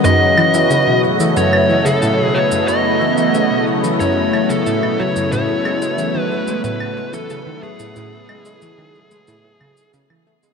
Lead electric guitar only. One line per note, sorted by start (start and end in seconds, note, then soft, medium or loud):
0.05 1.00 D#5 loud
1.37 1.88 C#5 medium
1.86 2.24 A4 medium
2.24 2.37 G#4 medium
2.35 2.68 C#5 medium
2.68 3.63 D#5 medium
4.00 4.51 C#5 loud
4.50 5.01 A4 loud
5.00 5.32 C#5 loud
5.33 6.20 C#5 loud
6.20 6.61 B4 loud
6.65 7.14 B4 loud
7.14 7.63 A4 medium
7.63 9.90 G#4 medium